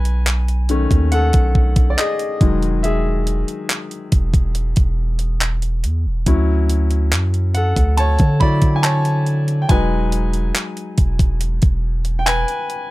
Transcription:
0.00 0.87 B1 loud
0.00 1.09 B4 medium
0.00 1.17 G#5 loud
0.05 closed hi-hat medium
0.26 clap loud
0.26 closed hi-hat medium
0.48 closed hi-hat soft
0.69 1.94 D#3 medium
0.69 1.94 A3 medium
0.69 1.95 C#4 medium
0.69 closed hi-hat medium
0.91 1.32 D#2 loud
0.91 kick loud
0.91 closed hi-hat medium
1.12 1.88 A4 medium
1.12 1.93 F#5 loud
1.12 closed hi-hat medium
1.33 1.96 B1 loud
1.33 kick loud
1.33 closed hi-hat medium
1.55 kick medium
1.76 kick loud
1.76 closed hi-hat medium
1.90 1.98 D5 medium
1.98 2.81 G#4 medium
1.98 2.86 D#5 medium
1.98 clap loud
1.98 closed hi-hat medium
2.19 closed hi-hat soft
2.41 3.44 E1 loud
2.41 5.80 D#3 medium
2.41 5.80 F#3 medium
2.41 5.80 G#3 medium
2.41 kick loud
2.41 closed hi-hat soft
2.63 closed hi-hat soft
2.83 4.09 G#4 medium
2.83 4.08 E5 medium
2.83 closed hi-hat medium
3.27 closed hi-hat medium
3.48 closed hi-hat medium
3.70 clap loud
3.70 closed hi-hat medium
3.91 closed hi-hat soft
4.12 4.74 E1 loud
4.12 kick loud
4.12 closed hi-hat medium
4.34 kick loud
4.34 closed hi-hat medium
4.55 closed hi-hat medium
4.76 5.86 E1 loud
4.76 kick loud
4.76 closed hi-hat medium
5.19 closed hi-hat medium
5.41 clap loud
5.41 closed hi-hat medium
5.62 closed hi-hat medium
5.84 6.07 E2 medium
5.84 closed hi-hat medium
6.06 6.26 E1 loud
6.26 7.14 D2 loud
6.26 6.84 F#3 medium
6.26 6.84 C#4 medium
6.26 6.84 E4 medium
6.26 kick loud
6.26 closed hi-hat medium
6.70 closed hi-hat medium
6.91 closed hi-hat soft
7.12 7.74 F#2 loud
7.12 clap loud
7.12 closed hi-hat medium
7.34 closed hi-hat soft
7.54 7.96 A4 medium
7.54 7.99 F#5 medium
7.54 closed hi-hat medium
7.76 8.18 D2 loud
7.76 kick loud
7.76 closed hi-hat medium
7.97 8.39 C#5 medium
7.97 8.42 A5 loud
7.97 closed hi-hat medium
8.19 9.66 D3 loud
8.19 kick loud
8.19 closed hi-hat medium
8.40 8.80 F#3 medium
8.40 8.80 E4 medium
8.40 8.80 C#5 soft
8.40 8.75 D5 medium
8.40 8.77 B5 loud
8.40 kick loud
8.62 kick loud
8.62 closed hi-hat medium
8.76 8.83 G#5 medium
8.83 9.59 C#5 medium
8.83 9.64 A5 loud
8.83 clap loud
8.83 closed hi-hat medium
9.05 closed hi-hat medium
9.26 closed hi-hat soft
9.48 closed hi-hat soft
9.62 9.69 G5 medium
9.69 10.52 E1 loud
9.69 10.94 F#3 medium
9.69 10.94 G#3 medium
9.69 10.95 D#4 medium
9.69 10.95 B4 medium
9.69 10.94 G#5 medium
9.69 kick loud
9.69 closed hi-hat medium
10.12 closed hi-hat medium
10.34 closed hi-hat medium
10.55 clap loud
10.55 closed hi-hat medium
10.77 closed hi-hat soft
10.98 11.60 E1 loud
10.98 kick loud
10.98 closed hi-hat medium
11.19 kick loud
11.19 closed hi-hat medium
11.41 closed hi-hat medium
11.62 12.45 E1 loud
11.62 kick loud
11.62 closed hi-hat medium
12.05 closed hi-hat medium
12.19 12.26 G5 medium
12.26 12.91 B4 medium
12.26 12.91 G#5 loud
12.26 clap loud
12.26 closed hi-hat medium
12.48 closed hi-hat medium
12.70 closed hi-hat medium

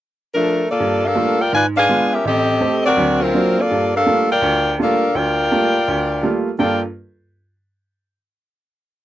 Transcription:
0.34 0.66 F3 medium
0.34 0.66 A3 medium
0.34 0.66 D4 medium
0.34 0.66 A#4 medium
0.70 1.05 A#3 medium
0.70 1.04 F4 medium
0.70 1.05 A4 medium
0.70 1.05 D5 medium
0.80 1.11 G2 medium
1.05 1.40 D4 medium
1.05 1.41 A4 medium
1.05 1.39 A#4 medium
1.05 1.40 F5 medium
1.15 1.40 G3 soft
1.15 1.40 A3 soft
1.15 1.40 A#3 soft
1.15 1.41 F4 soft
1.40 1.53 F4 medium
1.40 1.53 A#4 medium
1.40 1.53 D5 medium
1.40 1.53 G5 medium
1.53 1.84 G#2 medium
1.53 1.64 F4 medium
1.53 1.65 B4 medium
1.53 1.64 D5 medium
1.53 1.65 G#5 medium
1.77 2.10 D4 medium
1.77 2.10 G#4 medium
1.77 2.10 B4 medium
1.77 2.10 F5 loud
1.89 2.13 G#3 soft
1.89 2.14 B3 soft
1.89 2.14 F4 medium
2.13 2.26 C#4 medium
2.13 2.26 G4 medium
2.13 2.26 A#4 medium
2.13 2.26 E5 medium
2.25 2.56 A1 medium
2.25 2.82 C4 medium
2.25 2.82 G4 medium
2.25 2.82 A4 medium
2.25 2.82 D#5 medium
2.60 2.85 A3 soft
2.60 2.86 C4 soft
2.60 2.86 G4 medium
2.86 3.19 C4 medium
2.86 3.19 F#4 medium
2.86 3.19 A#4 medium
2.86 3.19 D5 medium
2.97 3.29 D2 medium
2.97 3.29 F#3 medium
3.21 3.57 F#3 medium
3.21 3.57 C4 medium
3.21 3.58 F4 medium
3.21 3.57 A#4 medium
3.34 3.58 F#3 soft
3.34 3.59 A#3 soft
3.34 3.59 C4 soft
3.34 3.59 D4 medium
3.59 3.94 A#3 medium
3.59 3.94 F4 medium
3.59 3.94 A4 medium
3.59 3.94 D5 medium
3.71 4.02 G2 medium
3.95 4.28 D4 medium
3.95 4.28 A4 medium
3.95 4.28 A#4 medium
3.95 4.28 F5 medium
4.06 4.31 G3 soft
4.06 4.31 A3 soft
4.06 4.31 A#3 soft
4.06 4.31 F4 soft
4.31 4.76 F4 medium
4.31 4.76 A#4 medium
4.31 4.76 D5 medium
4.31 4.76 G5 medium
4.42 4.73 D2 medium
4.79 5.03 G3 medium
4.79 5.03 A3 soft
4.79 5.03 A#3 soft
4.79 5.16 D4 medium
4.79 5.03 F4 medium
4.79 5.16 A4 medium
4.79 5.15 A#4 medium
4.79 5.16 F5 medium
5.15 5.46 D2 medium
5.15 6.47 F4 medium
5.15 6.47 A#4 medium
5.15 6.47 D5 medium
5.15 6.47 G5 medium
5.51 5.75 G3 soft
5.51 5.76 A3 soft
5.51 5.76 A#3 soft
5.51 5.76 F4 medium
5.88 6.19 D2 medium
6.23 6.47 G3 soft
6.23 6.47 A3 soft
6.23 6.48 A#3 soft
6.23 6.48 F4 medium
6.59 6.80 G2 medium
6.59 6.80 G3 soft
6.59 6.80 A#3 medium
6.59 6.80 F4 medium
6.59 6.80 A4 medium
6.59 6.81 A#4 medium
6.59 6.81 D5 medium
6.59 6.81 G5 medium

